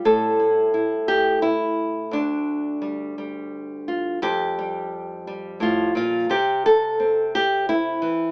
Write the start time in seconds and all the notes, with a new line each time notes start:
Already playing: G3
0.05 A2 A4
0.40 E4
0.74 E4
1.08 G4
1.42 E4
2.11 D2 D4
2.82 G3
3.18 G3
3.88 F4
4.22 F2 G4
4.59 G3
5.27 G3
5.60 A2 F4
5.95 A#2 F4
6.29 C3 G4
6.66 A4
7.00 C4
7.35 G4
7.69 E4
8.02 E3